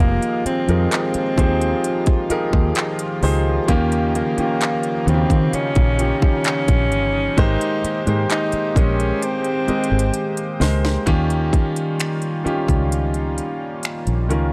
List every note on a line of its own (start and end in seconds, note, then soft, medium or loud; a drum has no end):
0.00 0.17 F1 loud
0.00 11.03 D#3 medium
0.00 0.45 F3 medium
0.00 7.34 F3 medium
0.00 3.64 G#3 medium
0.00 0.42 A#3 loud
0.00 11.03 A#3 medium
0.00 0.45 D#4 medium
0.00 7.34 F4 medium
0.00 0.45 G4 medium
0.00 0.46 G#4 medium
0.00 0.46 A#4 medium
0.22 closed hi-hat medium
0.46 0.89 C4 loud
0.46 muted fingered electric bass stroke soft
0.46 closed hi-hat medium
0.68 0.86 F2 loud
0.68 1.22 F3 medium
0.68 1.22 D#4 medium
0.68 1.22 G4 medium
0.68 1.22 G#4 medium
0.68 1.23 A#4 medium
0.68 closed hi-hat soft
0.92 2.73 C4 loud
0.92 clap loud
0.92 closed hi-hat medium
1.14 muted fingered electric bass stroke soft
1.14 closed hi-hat medium
1.37 1.73 D#2 medium
1.37 2.09 F3 medium
1.37 2.09 D#4 medium
1.37 2.10 G4 medium
1.37 2.10 G#4 medium
1.37 2.10 C5 medium
1.37 kick loud
1.37 closed hi-hat medium
1.61 closed hi-hat medium
1.84 closed hi-hat medium
2.06 kick medium
2.06 closed hi-hat soft
2.30 3.02 F3 medium
2.30 3.02 D#4 medium
2.30 3.02 G4 medium
2.30 3.02 G#4 medium
2.30 3.02 A#4 loud
2.30 muted fingered electric bass stroke soft
2.30 closed hi-hat medium
2.53 2.71 D#2 loud
2.53 kick loud
2.75 clap loud
2.75 closed hi-hat medium
2.99 closed hi-hat medium
3.22 3.58 C#2 loud
3.22 3.58 F3 medium
3.22 3.58 D#4 medium
3.22 3.58 G4 medium
3.22 3.58 G#4 medium
3.22 3.59 C5 medium
3.22 open hi-hat medium
3.68 4.22 D#2 loud
3.68 5.51 C#3 medium
3.68 4.22 D#3 loud
3.68 4.12 A#3 medium
3.68 4.22 C#4 medium
3.68 4.23 F4 medium
3.68 4.23 G4 loud
3.68 kick loud
3.68 closed hi-hat medium
3.92 closed hi-hat medium
4.15 5.09 A#3 loud
4.15 closed hi-hat medium
4.37 4.91 D#3 medium
4.37 4.92 C#4 medium
4.37 4.92 F4 medium
4.37 4.92 G4 medium
4.37 muted fingered electric bass stroke medium
4.37 closed hi-hat soft
4.61 clap loud
4.61 closed hi-hat medium
4.83 closed hi-hat soft
5.06 5.25 D#2 loud
5.06 5.79 C#3 medium
5.06 5.78 D#3 medium
5.06 5.56 C4 medium
5.06 5.79 F4 medium
5.06 5.14 F#4 medium
5.06 closed hi-hat medium
5.14 5.82 G4 medium
5.30 5.48 D#3 loud
5.30 kick medium
5.30 closed hi-hat soft
5.53 6.23 C#4 loud
5.53 7.36 D#4 medium
5.53 muted fingered electric bass stroke medium
5.53 closed hi-hat medium
5.75 6.12 A#1 medium
5.75 kick loud
5.75 closed hi-hat soft
5.98 7.07 D#3 medium
5.98 7.07 C#4 medium
5.98 7.07 F4 medium
5.98 7.07 G4 medium
5.98 closed hi-hat medium
6.22 7.40 C#4 loud
6.22 kick loud
6.44 clap loud
6.44 closed hi-hat medium
6.68 6.92 A#1 loud
6.68 kick medium
6.68 closed hi-hat medium
6.92 7.27 G1 loud
6.92 closed hi-hat soft
7.37 7.55 G#1 loud
7.37 7.91 G#3 loud
7.37 11.03 G#3 medium
7.37 8.04 D#4 loud
7.37 7.91 G4 loud
7.37 11.03 G4 medium
7.37 7.92 A#4 medium
7.37 11.03 C5 medium
7.37 7.92 C5 loud
7.37 kick loud
7.37 closed hi-hat medium
7.61 closed hi-hat medium
7.84 muted fingered electric bass stroke medium
7.84 closed hi-hat medium
8.06 8.25 G#2 loud
8.06 8.60 G#3 medium
8.06 8.60 G4 medium
8.06 8.61 A#4 medium
8.06 8.61 C5 medium
8.06 closed hi-hat soft
8.30 8.79 D#4 loud
8.30 clap loud
8.30 closed hi-hat medium
8.52 muted fingered electric bass stroke soft
8.52 closed hi-hat soft
8.75 9.12 A#1 medium
8.75 9.48 G#3 medium
8.75 9.25 C#4 loud
8.75 9.48 G4 medium
8.75 9.48 A#4 medium
8.75 9.48 D#5 medium
8.75 kick loud
8.75 closed hi-hat medium
9.00 closed hi-hat medium
9.22 10.61 C4 loud
9.22 closed hi-hat medium
9.44 closed hi-hat soft
9.68 10.40 G#3 medium
9.68 10.40 G4 medium
9.68 10.40 A#4 medium
9.68 10.41 D#5 medium
9.68 muted fingered electric bass stroke soft
9.68 closed hi-hat soft
9.84 closed hi-hat medium
9.91 10.09 G#1 medium
9.99 closed hi-hat medium
10.14 closed hi-hat medium
10.37 closed hi-hat medium
10.60 10.96 C#2 medium
10.60 10.96 G#3 medium
10.60 10.96 G4 medium
10.60 10.97 A#4 medium
10.60 10.97 C5 medium
10.60 snare loud
10.60 open hi-hat medium
10.85 snare loud
11.06 11.60 D#2 loud
11.06 12.14 D#3 loud
11.06 14.53 D#3 medium
11.06 14.53 G3 medium
11.06 14.53 A#3 medium
11.06 12.15 C#4 loud
11.06 14.53 C#4 medium
11.06 12.15 F4 loud
11.06 14.53 F4 medium
11.06 12.15 G4 loud
11.06 kick loud
11.06 closed hi-hat medium
11.30 closed hi-hat soft
11.53 kick loud
11.53 closed hi-hat medium
11.76 closed hi-hat medium
12.00 finger snap loud
12.00 closed hi-hat medium
12.22 closed hi-hat soft
12.44 13.89 D#3 medium
12.44 13.89 C#4 medium
12.44 13.89 F4 medium
12.44 13.89 G4 medium
12.44 muted fingered electric bass stroke soft
12.44 closed hi-hat soft
12.69 13.40 C#2 medium
12.69 kick medium
12.69 closed hi-hat soft
12.92 closed hi-hat medium
13.14 closed hi-hat soft
13.38 closed hi-hat medium
13.83 finger snap loud
13.83 closed hi-hat medium
14.07 14.30 A#1 medium
14.07 closed hi-hat soft
14.29 14.53 C#2 medium
14.29 14.53 D#3 medium
14.29 14.53 C#4 medium
14.29 14.53 F4 medium
14.29 14.53 A#4 medium
14.29 closed hi-hat medium